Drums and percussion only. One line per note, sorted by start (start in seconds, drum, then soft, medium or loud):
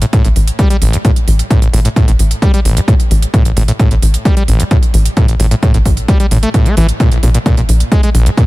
0.02 closed hi-hat medium
0.13 kick loud
0.13 closed hi-hat medium
0.25 closed hi-hat medium
0.36 open hi-hat loud
0.48 closed hi-hat medium
0.59 kick loud
0.59 closed hi-hat medium
0.70 closed hi-hat medium
0.82 open hi-hat loud
0.93 closed hi-hat medium
1.05 kick loud
1.05 closed hi-hat medium
1.16 closed hi-hat medium
1.28 open hi-hat loud
1.39 closed hi-hat medium
1.51 kick loud
1.51 closed hi-hat medium
1.62 closed hi-hat medium
1.74 open hi-hat loud
1.85 closed hi-hat medium
1.96 kick loud
1.96 closed hi-hat medium
2.08 closed hi-hat medium
2.19 open hi-hat loud
2.31 closed hi-hat medium
2.42 kick loud
2.42 closed hi-hat medium
2.54 closed hi-hat medium
2.65 open hi-hat loud
2.77 closed hi-hat medium
2.88 kick loud
2.88 closed hi-hat medium
3.00 closed hi-hat medium
3.11 open hi-hat loud
3.22 closed hi-hat medium
3.34 kick loud
3.34 closed hi-hat medium
3.45 closed hi-hat medium
3.57 open hi-hat loud
3.68 closed hi-hat medium
3.79 kick loud
3.79 closed hi-hat medium
3.91 closed hi-hat medium
4.03 open hi-hat loud
4.14 closed hi-hat medium
4.25 kick loud
4.25 closed hi-hat medium
4.37 closed hi-hat medium
4.48 open hi-hat loud
4.60 closed hi-hat medium
4.71 kick loud
4.71 closed hi-hat medium
4.83 closed hi-hat medium
4.94 open hi-hat loud
5.05 closed hi-hat medium
5.17 kick loud
5.17 closed hi-hat medium
5.28 closed hi-hat medium
5.40 open hi-hat loud
5.51 closed hi-hat medium
5.63 kick loud
5.63 closed hi-hat medium
5.74 closed hi-hat medium
5.86 kick medium
5.86 open hi-hat loud
5.97 closed hi-hat medium
6.08 kick loud
6.08 closed hi-hat medium
6.20 closed hi-hat medium
6.31 open hi-hat loud
6.43 closed hi-hat medium
6.54 kick loud
6.54 closed hi-hat medium
6.66 closed hi-hat medium
6.77 open hi-hat loud
6.89 closed hi-hat medium
7.00 kick loud
7.00 closed hi-hat medium
7.12 closed hi-hat medium
7.23 open hi-hat loud
7.34 closed hi-hat medium
7.46 kick loud
7.46 closed hi-hat medium
7.57 closed hi-hat medium
7.69 open hi-hat loud
7.80 closed hi-hat medium
7.92 kick loud
7.92 closed hi-hat medium
8.03 closed hi-hat medium
8.15 open hi-hat loud
8.26 closed hi-hat medium
8.37 kick loud
8.37 closed hi-hat medium